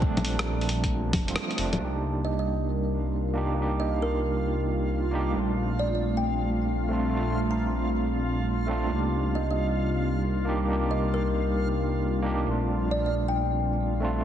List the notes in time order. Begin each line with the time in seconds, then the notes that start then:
Already playing: A#1 G3 A3 C4 D4 F4
0.00 F3 A3 C4, kick
0.06 D4
0.17 closed hi-hat, low bongo
0.25 open hi-hat
0.39 A#5, cross-stick, closed hi-hat
0.61 open hi-hat
0.69 A#1, open hi-hat
0.84 kick, closed hi-hat
1.13 F1, kick, open hi-hat, low bongo
1.27 F3 A3 C4 F4, closed hi-hat
1.36 cross-stick, open hi-hat
1.51 closed hi-hat
1.56 F1 F3 A3 C4, open hi-hat
1.60 D4
1.73 A#3, closed hi-hat, low bongo
1.79 C2 D4 D#4 F4 F5
1.84 G4
2.00 A#4
2.24 C4 D#5
2.39 D#5
2.68 F4
3.33 A#3 D4 D#4 G4
3.54 A#3 D4
3.59 D#4 G4
3.80 D#5
4.02 A#4
5.11 A#3 D4 D#4 G4
5.31 A3 C4
5.36 A#1 D4 F4
5.61 A3
5.79 D5
5.95 D5
6.17 G5
6.89 A3 C4 D4
6.93 F4
7.09 A3 C4
7.15 D4 F4
7.51 A#5
8.67 A3 C4 D4
8.71 F4
8.87 G3 A#3 D4
8.91 C2 D#4 G4
9.35 D#5
9.51 D#5
9.66 A#4
10.45 A#3 D4 D#4 G4
10.65 A#3 D4
10.70 D#4 G4
10.91 D#5
11.14 A#4
12.22 A#3 D4 D#4 G4
12.43 A3 C4
12.47 A#1 D4 F4
12.91 D5
13.06 D5
13.28 G5
14.00 A3 C4 D4
14.04 F4
14.21 A3